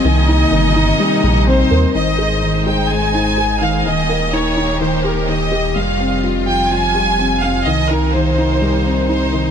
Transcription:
<<
  \new Staff \with { instrumentName = "Violin section" } { \time 4/4 \key aes \major \tempo 4 = 126 ees''2. c''4 | ees''4. g''8 aes''4. f''8 | ees''4 des''4 c''8 bes'8 ees''4 | f''4 r8 g''8 aes''4. f''8 |
ees''8 bes'8 c''2 c''4 | }
  \new Staff \with { instrumentName = "Felt piano" } { \time 4/4 \key aes \major ees8 ees'8 ees8 ees'8 g8 g8 c'8 bes'8 | ees8 aes'8 ees8 aes'8 aes8 ees'8 aes'8 ees8 | ees8 bes'8 ees'8 ees'8 ees8 g'8 ees8 g'8 | g8 c'8 f'8 f8 f8 g'8 c'8 c'8 |
ees8 ees'8 ees8 ees'8 g8 c'8 ees'8 ees8 | }
  \new Staff \with { instrumentName = "String section" } { \time 4/4 \key aes \major <c bes ees'>1 | <aes ees' c''>1 | <ees bes g'>1 | <g f'>1 |
<c bes ees'>1 | }
  \new Staff \with { instrumentName = "Detuned saw bass" } { \clef bass \time 4/4 \key aes \major c,4 g,,4 r8 bes,,4 ees,8 | aes,,1 | ees,,1 | f,,1 |
c,1 | }
>>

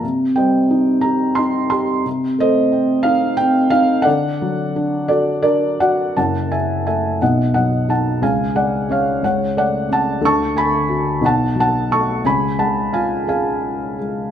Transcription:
<<
  \new Staff \with { instrumentName = "Felt piano" } { \time 6/8 \key d \phrygian \tempo 4. = 59 << { r8 g''4 bes''8 c'''8 c'''8 | r8 ees''4 f''8 g''8 f''8 | fis''4. d''8 d''8 fis''8 | \key fis \minor a''8 gis''8 gis''8 fis''8 fis''8 a''8 |
gis''8 fis''8 eis''8 fis''8 fis''8 a''8 | cis'''8 b''4 a''8 a''8 cis'''8 | b''8 a''8 gis''8 gis''4. | } \\ { r8 <c'' ees''>4. r4 | r8 <a' c''>4. r4 | <a' d''>4. a'8 bes'8 d''8 | fis''8 e''8 e''8 dis''8 dis''8 fis''8 |
eis''8 d''8 cis''8 cis''8 d''8 fis''8 | a''8 gis''4 fis''8 fis''8 a''8 | gis''8 fis''8 eis''8 eis''4. | } >> }
  \new Staff \with { instrumentName = "Felt piano" } { \clef bass \time 6/8 \key d \phrygian c8 g8 ees'8 g'8 ees'8 g'8 | c8 a8 c'8 ees'8 c'8 ees'8 | d8 fis8 d'8 fis'8 d'8 fis'8 | \key fis \minor <fis,, fis,>8 cis8 a8 <b,, b,>8 fis8 dis'8 |
<cis, cis>8 gis8 cis'8 <cis, cis>8 a8 cis'8 | <d, d>8 a8 fis'8 <b,, b,>8 fis8 a8 | <cis, cis>8 gis8 eis'8 gis'4 gis8 | }
>>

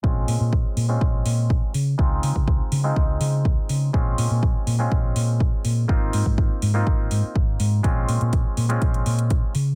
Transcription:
<<
  \new Staff \with { instrumentName = "Clav" } { \time 4/4 \key bes \minor \tempo 4 = 123 <aes c' des' f'>4.~ <aes c' des' f'>16 <aes c' des' f'>4.~ <aes c' des' f'>16 r8 | <aes c' ees' f'>4.~ <aes c' ees' f'>16 <aes c' ees' f'>2~ <aes c' ees' f'>16 | <aes c' des' f'>4.~ <aes c' des' f'>16 <aes c' des' f'>2~ <aes c' des' f'>16 | <bes c' ees' f'>4.~ <bes c' ees' f'>16 <bes c' ees' f'>2~ <bes c' ees' f'>16 |
<aes c' des' f'>4.~ <aes c' des' f'>16 <aes c' des' f'>4.~ <aes c' des' f'>16 r8 | }
  \new Staff \with { instrumentName = "Fingered electric bass" } { \clef bass \time 4/4 \key bes \minor bes,,8 bes,16 bes,16 bes,,16 r16 bes,8 bes,,8 bes,8 bes,,16 r16 des8 | des,8 des16 des16 des,16 r16 des8 des,8 des8 des,16 r16 des8 | bes,,8 bes,16 bes,16 bes,,16 r16 bes,8 bes,,8 bes,8 bes,,16 r16 bes,8 | aes,,8 aes,16 aes,16 aes,,16 r16 aes,8 aes,,8 aes,16 r16 aes,,8 aes,8 |
bes,,8 bes,16 bes,16 bes,,16 r16 bes,8 bes,,8 bes,8 bes,,16 r16 des8 | }
  \new DrumStaff \with { instrumentName = "Drums" } \drummode { \time 4/4 bd8 hho8 bd8 hho8 bd8 hho8 bd8 hho8 | bd8 hho16 bd16 bd8 hho8 bd8 hho8 bd8 hho8 | bd8 hho8 bd8 hho8 bd8 hho8 bd8 hho8 | bd8 hho16 bd16 bd8 hho8 bd8 hho8 bd8 hho8 |
<hh bd>8 hho16 hh16 <hh bd>8 hho16 hh16 <hh bd>16 hh16 hho16 hh16 <hh bd>8 hho8 | }
>>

